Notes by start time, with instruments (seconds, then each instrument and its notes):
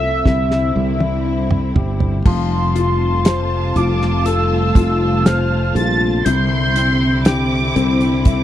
Already playing: fretless electric bass C2, grand piano C3 A3 C4 A4, string section C3 F3 G3 F4, soft synth lead E5
0.25 fretless electric bass C2, grand piano C3, string section D3 G3 C4 E4, kick, snare
0.51 snare
0.76 fretless electric bass C2, grand piano G3
1.00 high tom
1.25 grand piano E4
1.51 mid tom
1.75 fretless electric bass G1, grand piano G4, floor tom
2.00 floor tom
2.24 fretless electric bass F1, string section C3 G3 A3 F4, grand piano F3, violin section A5, soft synth lead C6, kick, crash
2.75 grand piano F4, closed hi-hat
3.25 grand piano C5, snare, closed hi-hat
3.76 fretless electric bass F1, grand piano F4, soft synth lead D6, closed hi-hat
4.02 snare
4.26 grand piano A4, soft synth lead E6, closed hi-hat
4.75 fretless electric bass F1, grand piano F4, kick, closed hi-hat
5.25 grand piano C5, soft synth lead F6, snare, closed hi-hat
5.75 fretless electric bass A#1, grand piano F4, soft synth lead A6, closed hi-hat
6.25 fretless electric bass C2, grand piano C3, string section D3 C4 E4, violin section C6, soft synth lead G6, closed hi-hat
6.76 grand piano C4, closed hi-hat
7.25 grand piano G4, violin section D6, snare, closed hi-hat
7.76 fretless electric bass C2, grand piano C4, closed hi-hat
8.01 closed hi-hat
8.25 grand piano E4, violin section D6, kick, closed hi-hat